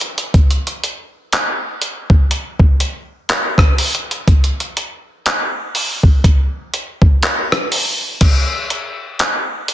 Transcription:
0.01 closed hi-hat medium
0.18 closed hi-hat medium
0.34 kick loud
0.34 closed hi-hat medium
0.51 closed hi-hat medium
0.67 closed hi-hat medium
0.84 closed hi-hat medium
1.33 clap loud
1.33 closed hi-hat medium
1.82 closed hi-hat medium
2.10 kick medium
2.31 closed hi-hat medium
2.59 kick loud
2.80 closed hi-hat medium
3.29 clap loud
3.29 closed hi-hat medium
3.58 kick medium
3.58 cross-stick medium
3.78 closed hi-hat medium
3.78 open hi-hat medium
3.95 closed hi-hat medium
4.11 closed hi-hat medium
4.28 kick loud
4.28 closed hi-hat medium
4.44 closed hi-hat medium
4.60 closed hi-hat medium
4.77 closed hi-hat medium
5.26 clap loud
5.26 closed hi-hat medium
5.75 open hi-hat soft
6.03 kick medium
6.24 kick loud
6.24 closed hi-hat medium
6.74 closed hi-hat medium
7.02 kick medium
7.23 clap loud
7.23 closed hi-hat medium
7.52 cross-stick medium
7.72 open hi-hat medium
8.21 kick loud
8.21 closed hi-hat medium
8.21 crash loud
8.70 closed hi-hat medium
9.19 clap loud
9.19 closed hi-hat medium
9.68 closed hi-hat medium

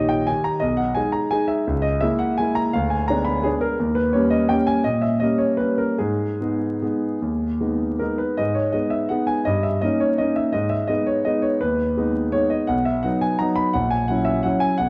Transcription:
0.00 0.31 A#1 soft
0.00 0.25 D#3 soft
0.00 0.26 D#4 soft
0.00 0.26 G4 soft
0.00 0.31 C#5 medium
0.00 0.31 D#5 medium
0.09 0.28 G5 medium
0.27 0.59 D#3 soft
0.27 0.59 D#4 soft
0.27 0.60 G4 soft
0.27 0.45 G#5 medium
0.44 0.62 A#5 medium
0.60 0.95 B1 soft
0.60 0.78 D#5 medium
0.77 0.95 F#5 medium
0.95 1.29 G#3 soft
0.95 1.29 D#4 soft
0.95 1.29 G#4 soft
0.95 1.13 G#5 medium
1.12 1.31 A#5 medium
1.31 1.64 G#3 soft
1.31 1.64 D#4 soft
1.31 1.64 G#4 soft
1.31 1.49 G#5 medium
1.48 1.66 E5 medium
1.67 2.01 C#2 soft
1.82 2.01 D#5 medium
2.01 2.35 G#3 soft
2.01 2.36 A#3 soft
2.01 2.36 E4 soft
2.01 2.20 E5 medium
2.19 2.38 F#5 medium
2.38 2.72 G#3 soft
2.38 2.72 A#3 soft
2.38 2.72 E4 soft
2.38 2.57 G#5 medium
2.55 2.74 A#5 medium
2.73 3.09 D2 medium
2.73 2.91 F5 medium
2.90 3.09 G#5 medium
3.08 3.42 G#3 soft
3.08 3.42 B3 soft
3.08 3.42 D4 soft
3.08 3.27 A#5 medium
3.25 3.44 B5 medium
3.43 3.77 G#3 soft
3.43 3.77 B3 soft
3.43 3.77 D4 soft
3.43 3.62 G#4 medium
3.61 3.96 A#4 medium
3.80 4.13 D#2 soft
3.95 4.14 B4 medium
4.13 4.47 G3 soft
4.13 4.47 A#3 soft
4.13 4.47 C#4 soft
4.13 4.31 C#5 medium
4.30 4.49 D#5 medium
4.49 4.82 G3 soft
4.49 4.82 A#3 soft
4.49 4.83 C#4 soft
4.49 4.68 G5 medium
4.67 4.85 G#5 medium
4.84 5.21 A#2 soft
4.84 5.03 D#5 medium
5.02 5.21 E5 medium
5.20 5.56 G3 soft
5.20 5.57 A#3 soft
5.20 5.57 C#4 soft
5.20 5.40 D#5 medium
5.38 5.59 C#5 medium
5.57 5.96 G3 soft
5.57 5.96 A#3 soft
5.57 5.97 C#4 soft
5.57 5.79 B4 medium
5.78 5.99 A#4 medium
5.98 6.39 G#2 soft
5.98 7.99 G#4 medium
6.41 6.78 G#3 soft
6.41 6.78 B3 soft
6.41 6.78 D#4 soft
6.82 7.18 G#3 soft
6.82 7.18 B3 soft
6.82 7.18 D#4 soft
7.22 7.60 D#2 soft
7.60 7.96 G#3 soft
7.60 7.97 B3 soft
7.60 7.97 D#4 soft
7.99 8.35 G#3 soft
7.99 8.35 B3 soft
7.99 8.35 D#4 soft
7.99 8.20 A#4 medium
8.18 8.38 B4 medium
8.37 8.73 G#2 soft
8.37 8.56 D#5 medium
8.55 8.74 C#5 medium
8.72 9.07 G#3 soft
8.72 9.07 B3 soft
8.72 9.08 D#4 soft
8.72 8.92 D#5 medium
8.90 9.10 E5 medium
9.09 9.43 G#3 soft
9.09 9.43 B3 soft
9.09 9.43 D#4 soft
9.09 9.28 F#5 medium
9.27 9.46 G#5 medium
9.45 9.81 G2 soft
9.45 9.63 D#5 medium
9.63 9.82 E5 medium
9.81 10.16 A#3 soft
9.81 10.16 C#4 soft
9.81 10.16 D#4 soft
9.81 10.00 D#5 medium
10.00 10.19 C#5 medium
10.18 10.51 A#3 soft
10.18 10.51 C#4 soft
10.18 10.51 D#4 soft
10.18 10.36 D#5 medium
10.36 10.54 E5 medium
10.53 10.89 G#2 soft
10.53 10.71 D#5 medium
10.70 10.89 E5 medium
10.87 11.22 G#3 soft
10.87 11.22 B3 soft
10.87 11.22 D#4 soft
10.87 11.06 D#5 medium
11.07 11.25 C#5 medium
11.25 11.58 G#3 soft
11.25 11.58 B3 soft
11.25 11.59 D#4 soft
11.25 11.43 D#5 medium
11.42 11.60 C#5 medium
11.61 11.97 D#2 soft
11.61 12.33 B4 medium
11.97 12.30 G#3 soft
11.97 12.30 B3 soft
11.97 12.30 D#4 soft
12.32 12.65 G#3 soft
12.32 12.66 B3 soft
12.32 12.66 D#4 soft
12.32 12.51 C#5 medium
12.50 12.68 D#5 medium
12.67 13.03 B1 medium
12.67 12.85 F#5 medium
12.85 13.03 E5 medium
13.03 13.36 F#3 soft
13.03 13.37 B3 soft
13.03 13.37 D#4 soft
13.03 13.21 F#5 medium
13.21 13.40 G#5 medium
13.39 13.72 F#3 soft
13.39 13.72 B3 soft
13.39 13.72 D#4 soft
13.39 13.57 A#5 medium
13.56 13.74 B5 medium
13.73 14.08 A#1 soft
13.73 13.91 F#5 medium
13.90 14.09 G#5 medium
14.08 14.41 F#3 soft
14.08 14.42 C#4 soft
14.08 14.42 E4 soft
14.08 14.26 F#5 medium
14.25 14.44 E5 medium
14.43 14.76 F#3 soft
14.43 14.76 C#4 soft
14.43 14.76 E4 soft
14.43 14.61 F#5 medium
14.60 14.78 G#5 medium
14.78 14.89 B1 soft
14.78 14.89 F#5 medium

